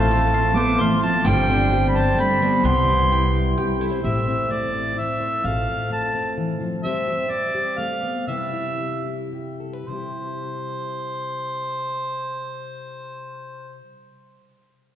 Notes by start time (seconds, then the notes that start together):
Already playing: A1 A2 F3 A3 C4 F4 A4 C5 F5 A5
0.10 A3 F4
0.34 C4 F5
0.55 B3 A4 C5 D6
0.80 E3 A3 F5 C6
1.02 F3 F4 A5
1.25 G1 D3 G3 C4 G4 C5 G5
1.49 C4 D4
1.73 G4 G5
1.88 G3 B5
1.96 F3 C5 A5
2.17 G3 A3 G5 B5
2.42 B3 D4
2.62 C2 C3 G3 B3 E4 G5 C6
2.88 G3 E4
3.12 E4 G5
3.58 G4 G5
3.80 E4 A4
3.91 C5
4.04 A1 A2 A3 C4 E4 C5 E5
4.28 C4
4.50 A3 D5
4.74 C4
4.96 E4 E5
5.20 C5
5.44 A1 A2 A3 C4 F4 A4 F5
5.68 C4
5.90 A3 A5
6.14 C4
6.38 E3
6.61 F3
6.83 G3 C4 G4 C5 E5
7.08 G4
7.30 C4 D5
7.55 G4
7.78 A3 F5
8.03 B3
8.27 C3 G3 E4 G4 B4 E5
8.53 E4
8.79 G3
9.06 E4
9.33 G4
9.60 A4
9.73 B4
9.87 C3 G3 C5
9.91 E4 G4